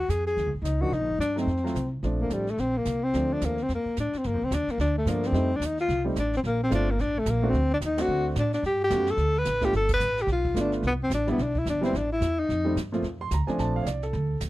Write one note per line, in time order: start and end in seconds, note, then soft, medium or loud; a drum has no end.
0.00 0.11 F#4 medium
0.09 0.36 F2 medium
0.09 0.26 G#4 medium
0.09 snare soft
0.09 hi-hat pedal soft
0.27 0.52 G#4 medium
0.27 snare soft
0.37 0.46 D#2 medium
0.37 brush sweep soft
0.37 snare soft
0.46 0.54 C#2 soft
0.55 0.61 A#1 soft
0.62 0.89 C#2 medium
0.62 0.83 D#4 medium
0.62 snare soft
0.62 hi-hat pedal soft
0.81 0.91 F3 medium
0.81 0.91 A#3 soft
0.81 0.92 D4 soft
0.81 0.92 D#4 medium
0.81 0.95 F#4 medium
0.90 1.01 C2 medium
0.90 1.20 D#4 medium
0.90 brush sweep soft
0.90 snare soft
1.01 1.09 A#1 soft
1.10 1.18 G1 soft
1.18 1.46 G2 medium
1.18 1.36 D4 medium
1.18 snare soft
1.18 hi-hat pedal soft
1.36 1.46 F#3 medium
1.36 1.46 A3 soft
1.36 1.47 C4 soft
1.36 1.89 C4 medium
1.36 1.47 D#4 medium
1.36 snare soft
1.46 1.74 F2 medium
1.46 brush sweep soft
1.46 snare soft
1.57 snare soft
1.64 1.74 F#3 medium
1.64 1.74 A3 medium
1.64 1.74 C4 soft
1.64 1.75 F4 medium
1.64 snare soft
1.75 2.02 C2 medium
1.75 snare soft
1.75 hi-hat pedal soft
2.03 2.29 A#1 medium
2.03 2.44 F3 soft
2.03 2.44 A3 soft
2.03 2.45 C4 soft
2.03 2.45 D4 medium
2.03 brush sweep soft
2.03 snare soft
2.21 2.35 A#3 medium
2.30 2.57 A1 medium
2.30 2.52 G3 medium
2.30 snare soft
2.30 hi-hat pedal soft
2.47 2.62 A3 medium
2.47 snare soft
2.58 2.85 A#1 medium
2.58 2.79 C4 medium
2.58 brush sweep soft
2.58 snare soft
2.77 3.05 A#3 medium
2.85 3.12 C2 medium
2.85 snare soft
2.85 hi-hat pedal soft
3.04 3.35 C4 medium
3.13 3.40 D2 medium
3.13 3.54 F3 soft
3.13 3.55 A3 soft
3.13 3.55 C4 soft
3.13 3.55 D4 soft
3.13 brush sweep soft
3.13 snare soft
3.33 3.47 D4 medium
3.41 3.68 D#2 medium
3.41 3.64 A#3 medium
3.41 snare soft
3.41 hi-hat pedal soft
3.58 snare soft
3.63 3.71 C4 medium
3.68 3.84 F2 medium
3.68 brush sweep soft
3.68 snare soft
3.75 3.97 A#3 medium
3.85 muted upright bass stroke soft
3.96 4.12 A2 medium
3.96 4.19 D4 medium
3.96 snare soft
3.96 hi-hat pedal soft
4.13 muted upright bass stroke soft
4.13 snare soft
4.18 4.28 C4 medium
4.24 4.33 G2 medium
4.24 4.46 A#3 medium
4.24 brush sweep soft
4.24 snare soft
4.33 4.41 F2 soft
4.42 4.50 D2 medium
4.42 4.56 C4 medium
4.51 4.66 D#2 medium
4.51 4.73 D4 medium
4.51 snare medium
4.51 hi-hat pedal medium
4.68 4.80 A#3 medium
4.68 muted upright bass stroke soft
4.68 snare soft
4.78 5.05 D2 medium
4.78 4.95 D4 medium
4.78 brush sweep soft
4.78 snare soft
4.98 5.09 A3 medium
5.05 5.31 G2 medium
5.05 5.34 F3 medium
5.05 5.32 A3 soft
5.05 5.28 A#3 medium
5.05 5.34 A#3 soft
5.05 5.35 D4 medium
5.05 snare soft
5.05 hi-hat pedal soft
5.23 5.58 C4 medium
5.23 snare soft
5.32 5.59 F2 medium
5.32 5.48 G3 medium
5.32 5.48 A3 soft
5.32 5.49 C4 soft
5.32 5.49 D#4 medium
5.32 brush sweep soft
5.32 snare soft
5.56 5.87 D#2 medium
5.56 5.67 D4 medium
5.61 5.80 D#4 medium
5.61 snare medium
5.61 hi-hat pedal medium
5.78 6.05 F4 medium
5.78 snare soft
5.89 6.15 C2 medium
5.89 brush sweep soft
5.89 snare soft
6.04 6.14 G3 medium
6.04 6.15 A3 soft
6.04 6.15 C4 soft
6.04 6.15 D#4 medium
6.16 6.42 A1 medium
6.16 6.33 D4 medium
6.16 snare medium
6.16 hi-hat pedal soft
6.33 6.41 C4 medium
6.33 snare soft
6.44 6.70 A#1 medium
6.44 6.60 A#3 medium
6.44 brush sweep soft
6.44 snare soft
6.63 6.72 C4 medium
6.70 6.98 G1 medium
6.70 6.85 A3 medium
6.70 6.86 C4 medium
6.70 6.86 D4 medium
6.70 6.86 F4 medium
6.70 snare medium
6.70 hi-hat pedal soft
6.75 6.92 D4 medium
6.91 7.02 A#3 medium
6.99 7.25 A1 medium
6.99 7.20 D4 medium
6.99 brush sweep soft
6.99 snare soft
7.19 7.31 A3 medium
7.26 7.52 A#1 medium
7.26 7.51 A#3 medium
7.26 snare medium
7.26 hi-hat pedal medium
7.42 7.52 A3 medium
7.42 7.52 C4 medium
7.42 7.53 D4 medium
7.42 7.53 F#4 medium
7.50 7.80 D2 medium
7.50 7.73 C4 medium
7.54 brush sweep soft
7.54 snare soft
7.74 7.78 D4 medium
7.81 8.07 D#2 medium
7.81 snare medium
7.81 hi-hat pedal medium
7.86 8.03 D#4 medium
7.97 8.33 A3 medium
7.97 8.34 C4 medium
7.97 8.34 D4 medium
7.97 8.34 F#4 medium
7.97 snare medium
7.97 ride medium
8.02 8.27 F#4 medium
8.08 8.35 D2 medium
8.08 brush sweep soft
8.36 8.62 A2 medium
8.36 8.53 D4 medium
8.36 snare medium
8.36 hi-hat pedal soft
8.52 8.63 D4 medium
8.52 snare soft
8.63 8.90 G2 medium
8.63 8.80 G4 medium
8.63 brush sweep soft
8.63 snare soft
8.84 9.12 G4 medium
8.90 9.16 F#2 medium
8.90 9.05 A3 medium
8.90 9.06 B3 soft
8.90 9.06 C#4 medium
8.90 9.06 F#4 medium
8.90 snare medium
8.90 hi-hat pedal soft
9.06 snare soft
9.11 9.40 A4 medium
9.17 9.44 D2 medium
9.17 brush sweep soft
9.17 snare soft
9.39 9.66 B4 medium
9.45 9.72 A1 medium
9.45 snare medium
9.45 hi-hat pedal soft
9.61 9.71 A3 medium
9.61 9.71 B3 medium
9.61 9.72 D4 soft
9.61 9.72 F4 medium
9.61 kick medium
9.61 snare soft
9.65 9.74 G4 medium
9.73 10.00 G1 medium
9.73 9.90 A4 medium
9.73 brush sweep soft
9.73 snare soft
9.89 kick medium
9.89 ride medium
9.94 10.24 B4 loud
10.00 10.26 A1 medium
10.00 hi-hat pedal medium
10.17 snare soft
10.22 10.30 G4 medium
10.27 10.54 B1 medium
10.27 brush sweep soft
10.27 snare soft
10.32 10.56 F4 medium
10.45 kick medium
10.55 10.82 G1 medium
10.55 10.83 A3 medium
10.55 10.83 B3 medium
10.55 10.83 D4 medium
10.55 10.84 F4 medium
10.55 snare medium
10.55 hi-hat pedal medium
10.61 10.74 D4 medium
10.72 snare soft
10.83 11.09 C2 medium
10.83 brush sweep soft
10.83 snare soft
10.87 10.93 B3 medium
11.03 11.12 C4 medium
11.10 11.37 A1 medium
11.10 snare medium
11.10 hi-hat pedal medium
11.14 11.28 D4 medium
11.27 11.37 G3 medium
11.27 11.37 B3 medium
11.27 11.44 B3 medium
11.27 11.38 D4 medium
11.27 11.38 E4 medium
11.27 snare soft
11.38 11.65 B1 medium
11.38 brush sweep soft
11.38 snare soft
11.42 11.60 D4 medium
11.55 11.67 E4 medium
11.55 kick medium
11.66 11.92 G1 medium
11.66 snare medium
11.66 hi-hat pedal soft
11.70 11.83 D4 medium
11.81 11.92 G3 medium
11.81 11.92 B3 medium
11.81 11.92 C4 medium
11.81 11.98 C4 medium
11.81 11.93 E4 medium
11.81 snare soft
11.93 12.20 A1 medium
11.93 12.12 D4 medium
11.93 brush sweep soft
11.93 snare soft
12.12 12.41 E4 medium
12.21 12.47 E2 medium
12.21 snare medium
12.21 hi-hat pedal medium
12.40 12.77 D#4 medium
12.49 12.75 F2 medium
12.49 brush sweep soft
12.49 snare soft
12.65 12.74 G3 medium
12.65 12.75 A3 medium
12.65 12.75 C4 medium
12.65 12.75 D#4 medium
12.76 13.02 G2 medium
12.76 snare medium
12.76 hi-hat pedal medium
12.92 13.02 A#2 medium
12.92 13.02 F3 medium
12.92 13.03 A3 medium
12.92 13.03 C4 medium
12.92 13.03 F4 medium
12.92 snare soft
13.03 13.30 F2 medium
13.03 brush sweep soft
13.03 snare soft
13.21 13.31 C6 medium
13.31 13.46 D2 medium
13.31 13.48 A#5 medium
13.31 snare medium
13.31 hi-hat pedal medium
13.47 13.84 F3 medium
13.47 13.84 A3 soft
13.47 13.84 C4 medium
13.47 13.84 D4 medium
13.47 13.58 G#5 medium
13.47 muted upright bass stroke soft
13.47 snare soft
13.58 13.85 A#1 medium
13.58 13.75 A5 medium
13.58 brush sweep soft
13.58 snare soft
13.76 13.86 F5 medium
13.83 14.12 C2 medium
13.83 13.85 C#5 soft
13.83 snare medium
13.83 hi-hat pedal soft
13.87 14.02 D5 medium
14.02 14.39 A4 medium
14.02 snare soft
14.13 14.40 D2 medium
14.13 brush sweep soft
14.13 snare soft
14.40 14.50 D#2 medium
14.40 snare medium
14.40 hi-hat pedal medium